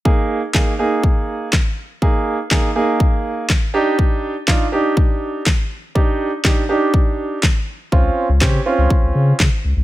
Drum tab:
CP |--x---x-|--x---x-|--x---x-|--x---x-|
SD |--o---o-|--o---o-|--o---o-|--o---o-|
BD |o-o-o-o-|o-o-o-o-|o-o-o-o-|o-o-o-o-|

CP |--x---x-|
SD |--o---o-|
BD |o-o-o-o-|